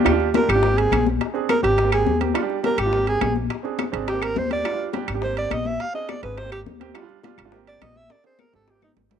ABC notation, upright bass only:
X:1
M:4/4
L:1/8
Q:1/4=209
K:Ablyd
V:1 name="Upright bass" clef=bass
E,,3 A,,,3 B,,,2 | z3 A,,,3 E,,2 | z3 A,,,3 B,,,2 | z3 A,,,3 E,,2 |
z3 A,,,3 B,,,2 | z3 A,,,3 E,,2 | z3 A,,,3 B,,,2 | z3 A,,,3 A,,,2 |]